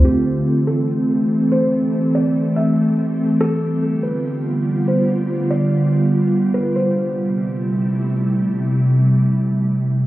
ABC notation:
X:1
M:4/4
L:1/8
Q:1/4=143
K:Am
V:1 name="Felt piano"
G3 A z3 c | z2 d2 e2 z2 | A3 B z3 c | z2 d2 z3 B |
c6 z2 | z8 |]
V:2 name="Ambient pad"
[E,A,CGA]8- | [E,A,CGA]8 | [D,G,B,F]8- | [D,G,B,F]8 |
[C,G,A,EG]8- | [C,G,A,EG]8 |]